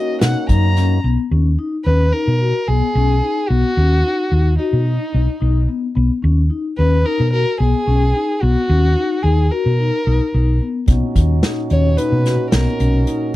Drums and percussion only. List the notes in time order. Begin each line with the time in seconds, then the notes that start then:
0.21 snare, closed hi-hat
0.49 kick, closed hi-hat
0.77 snare, closed hi-hat
10.88 kick, closed hi-hat
11.16 kick, closed hi-hat
11.43 snare, closed hi-hat
11.70 closed hi-hat
11.98 closed hi-hat
12.26 snare, closed hi-hat
12.52 snare, closed hi-hat
12.80 closed hi-hat
13.07 closed hi-hat